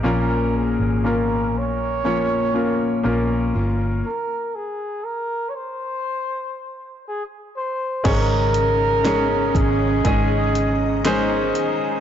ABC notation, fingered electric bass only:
X:1
M:4/4
L:1/16
Q:1/4=60
K:Bbm
V:1 name="Fingered electric bass" clef=bass
B,,,3 A,,,3 B,,,6 B,,,2 =G,,,2 | z16 | [K:Abmix] A,,,6 A,,,2 A,,,6 z2 |]